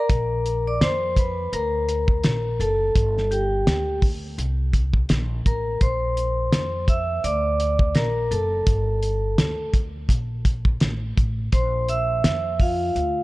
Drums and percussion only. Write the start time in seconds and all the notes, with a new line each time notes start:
0.10 kick, closed hi-hat
0.46 closed hi-hat
0.81 snare, closed hi-hat
1.17 kick, closed hi-hat
1.53 closed hi-hat
1.89 closed hi-hat
2.08 kick
2.24 snare, closed hi-hat
2.61 closed hi-hat
2.96 kick, closed hi-hat
3.18 snare
3.32 closed hi-hat
3.67 snare, closed hi-hat
4.02 kick, open hi-hat
4.39 closed hi-hat
4.73 kick, closed hi-hat
4.94 kick
5.09 snare, closed hi-hat
5.46 kick, closed hi-hat
5.81 kick, closed hi-hat
6.17 closed hi-hat
6.52 snare, closed hi-hat
6.88 kick, closed hi-hat
7.24 closed hi-hat
7.60 closed hi-hat
7.79 kick
7.95 snare, closed hi-hat
8.32 closed hi-hat
8.67 kick, closed hi-hat
9.03 closed hi-hat
9.38 snare, closed hi-hat
9.74 kick, closed hi-hat
10.09 kick, closed hi-hat
10.45 kick, closed hi-hat
10.65 kick
10.80 snare, closed hi-hat
11.18 kick, closed hi-hat
11.52 kick, closed hi-hat
11.88 closed hi-hat
12.24 snare, closed hi-hat
12.60 kick, open hi-hat
12.96 closed hi-hat